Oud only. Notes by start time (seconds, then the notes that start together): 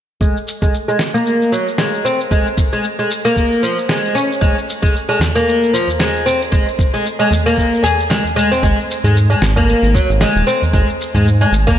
0.21 G#3
0.62 G#3
0.88 G#3
1.14 A#3
1.52 F#3
1.78 G#3
2.05 C4
2.31 G#3
2.73 G#3
2.99 G#3
3.25 A#3
3.63 F3
3.89 G#3
4.15 C#4
4.41 G#3
4.82 G#3
5.09 G#3
5.36 A#3
5.73 F3
5.99 G#3
6.26 C4
6.52 G#3
6.94 G#3
7.20 G#3
7.46 A#3
7.84 G#4
8.10 G#3
8.36 G#3
8.51 C4
8.63 G#3
9.04 G#3
9.30 G#3
9.57 A#3
9.94 F#3
10.21 G#3
10.47 C4
10.73 G#3
11.15 G#3
11.41 G#3
11.67 A#3